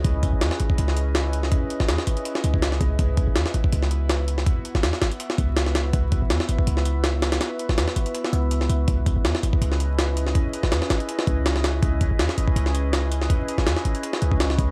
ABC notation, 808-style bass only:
X:1
M:4/4
L:1/16
Q:"Swing 16ths" 1/4=163
K:C#m
V:1 name="808-style bass" clef=bass
C,,3 G,,, E,, z G,,, z C,,8 | z3 G,,, E,, z G,,, z3 C,,4 C,,2 | C,,3 G,,, E,, z G,,, z C,,8 | z3 G,,, E,, z G,,, z3 C,,6 |
C,,3 G,,, E,, z G,,, z C,,8 | z3 G,,, E,, z G,,, z3 C,,4 C,,2 | C,,3 G,,, E,, z G,,, z C,,8 | z3 G,,, E,, z G,,, z3 C,,6 |
C,,3 G,,, E,, z G,,, z C,,8 | z3 G,,, E,, z G,,, z3 C,,4 C,,2 |]